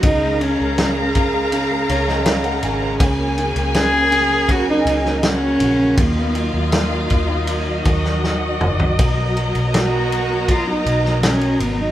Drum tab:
RD |x-x-x-x-x-x-xxx-|x-xxx-x-x-x-x-x-|x-x-x-x-x-x-----|x-xxx-x-x-x-xxx-|
SD |----o------oo---|----o------oo---|----o------oo---|----o------oo---|
T2 |----------------|----------------|--------------o-|----------------|
FT |----------------|----------------|---------------o|----------------|
BD |o-----o---------|o-------o-------|o-----o---o-----|o-------o-------|